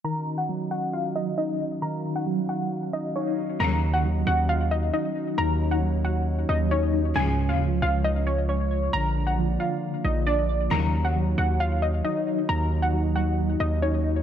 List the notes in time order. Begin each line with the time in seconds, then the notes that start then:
0.04 D#3 C#4 F#4 D#5 A#5
0.27 D#3
0.38 F#5
0.49 F#3
0.71 F#5
0.93 F5
1.16 D#5
1.38 D#4 D#5
1.60 D#4
1.82 D#3 F5 A#5
2.05 D#3
2.16 F#5
2.27 F#3
2.49 F#5
2.93 D#5
3.16 D#4 C#5
3.38 D#4
3.60 D#2 C#3 D#3 F#3 C#4 F#4 D#5 A#5
3.82 D#3
3.94 F#5
4.05 F#3
4.27 D#2 F#5
4.49 F5
4.71 D#5
4.93 D#4 D#5
5.16 D#4
5.38 D#2 D#3 C#5 A#5
5.60 D#3
5.71 F#5
5.82 F#3
6.05 F#5
6.49 D#2 D#5
6.71 D#4 C#5
6.93 D#4
7.15 C#2 G#2 C#3 F3 G#3 F4 G#5
7.38 C#3
7.49 D#2 F5
7.60 F3
7.66 C#2
7.82 C#2 F5
8.04 D#5
8.27 C#5
8.49 C#5
8.71 C#5
8.93 A#1 D3 A#3 D5 A#5
9.15 D3
9.27 F#5
9.38 F3
9.60 F5
10.04 A#1 D#5
10.26 D5
10.49 D5
10.71 D#2 C#3 D#3 F#3 D#4 F#4 C#5 A#5
10.93 D#3
11.05 F#5
11.16 F#3
11.38 D#2 F#5
11.60 F5
11.82 D#5
12.05 D#4 D#5
12.27 D#4
12.49 D#2 D#3 D#5 A#5
12.71 D#3
12.82 F#5
12.93 F#3
13.16 F#5
13.60 D#2 D#5
13.82 D#4 C#5
14.04 D#4